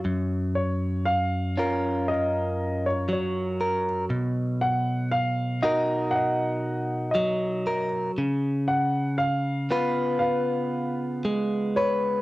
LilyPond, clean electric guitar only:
\new Staff \with { instrumentName = "Clean electric guitar" } { \time 4/4 \key fis \major \tempo 4 = 59 << { r4. <cis' eis' ais'>2 ais'8 | r4. <dis' fis' ais'>2 ais'8 | r4. <b eis' b'>2 b'8 | } \\ { <fis, fis>2. fis4 | b,2. fis4 | cis2. gis4 | } >> }